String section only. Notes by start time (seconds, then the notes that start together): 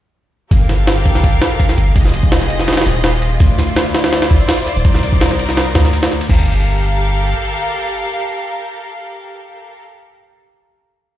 0.51 G4 A4 A#4 F5
1.96 F4 G4 G#4 D#5
3.40 E4 C5 D5
4.85 D#4 A#4
6.30 G4 A4 A#4 F5